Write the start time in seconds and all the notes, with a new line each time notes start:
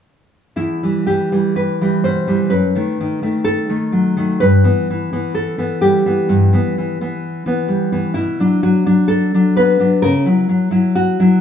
0.56 E2 E4
0.83 E3 G3
1.07 E3 G4
1.32 E3 G3
1.56 B4
1.81 E3 G3
2.04 B2 C5
2.27 E3 G3
2.50 F#2 B4
2.75 D#3 A3
3.01 D#3
3.22 D#3 A3
3.44 A4
3.69 D#3 A3
3.92 F#3
4.17 D#3 A3
4.40 G2 B4
4.64 E3 B3
4.90 E3
5.13 E3 B3
5.35 A4
5.58 E3 B3
5.81 G3 G4
6.06 E3 B3
6.29 G2
6.53 E3 B3
6.78 E3
7.01 E3 B3
7.46 E3 B3
7.68 G3
7.92 E3 B3
8.14 B2 E4
8.40 F#3 D4
8.63 F#3 F#4
8.86 F#3 D4
9.08 A4
9.34 F#3 D4
9.57 B3 B4
9.79 F#3 D4
10.02 C#3 A#4
10.26 F#3 E4
10.49 F#3
10.71 F#3 E4
10.95 F#4
11.20 F#3 E4